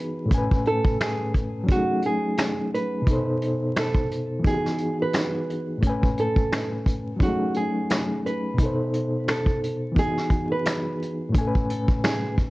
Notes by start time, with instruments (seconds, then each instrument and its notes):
Already playing: reed electric piano E3 B3 D#4 F#4 G#4, nylon-string guitar B4
0.26 reed electric piano A2 A3
0.31 reed electric piano C#4 G#5, kick, closed hi-hat
0.38 reed electric piano B4
0.51 kick
0.65 nylon-string guitar A4, closed hi-hat
0.85 kick
1.01 nylon-string guitar G#4, finger snap, snare, closed hi-hat
1.34 kick, closed hi-hat
1.64 reed electric piano F#3 C#4
1.69 reed electric piano D#4 G#4, nylon-string guitar F#4, kick, closed hi-hat
1.75 reed electric piano A3
2.02 nylon-string guitar G#4, closed hi-hat
2.37 finger snap, snare, closed hi-hat
2.74 nylon-string guitar B4, closed hi-hat
3.02 reed electric piano B2 B3
3.07 reed electric piano D#4 A4, kick, closed hi-hat
3.13 reed electric piano C5
3.42 closed hi-hat
3.76 nylon-string guitar A4, finger snap, snare, closed hi-hat
3.94 kick
4.11 closed hi-hat
4.39 reed electric piano E3 B3
4.44 reed electric piano D#4 F#4, nylon-string guitar G#4, kick, closed hi-hat
4.51 reed electric piano G4
4.58 reed electric piano G#4
4.66 snare
4.78 closed hi-hat
5.02 nylon-string guitar B4
5.13 finger snap, snare, closed hi-hat
5.50 closed hi-hat
5.78 reed electric piano A2 A3
5.83 reed electric piano C#4, kick, closed hi-hat
5.87 reed electric piano B4 G#5
6.03 kick
6.17 nylon-string guitar A4, closed hi-hat
6.36 kick
6.52 finger snap, snare, closed hi-hat
6.86 kick, closed hi-hat
7.16 reed electric piano F#3 C#4, kick
7.22 reed electric piano D#4 G#4, nylon-string guitar F#4, closed hi-hat
7.28 reed electric piano A3
7.54 nylon-string guitar G#4, closed hi-hat
7.90 finger snap, snare, closed hi-hat
8.26 nylon-string guitar B4, closed hi-hat
8.54 reed electric piano B2 B3
8.58 reed electric piano D#4, kick, closed hi-hat
8.63 reed electric piano A4 C5
8.93 closed hi-hat
9.28 nylon-string guitar A4, finger snap, snare, closed hi-hat
9.46 kick
9.63 closed hi-hat
9.92 reed electric piano E3 B3
9.96 reed electric piano D#4 F#4, nylon-string guitar G#4, kick, closed hi-hat
10.03 reed electric piano G#4
10.17 snare
10.30 kick, closed hi-hat
10.52 nylon-string guitar B4
10.65 finger snap, snare, closed hi-hat
11.02 closed hi-hat
11.29 reed electric piano A2 A3
11.35 reed electric piano C#4 G#5, kick, closed hi-hat
11.41 reed electric piano A4
11.47 reed electric piano B4
11.55 kick
11.70 nylon-string guitar A4, closed hi-hat
11.88 kick
12.04 nylon-string guitar G#4, finger snap, snare, closed hi-hat
12.38 kick, closed hi-hat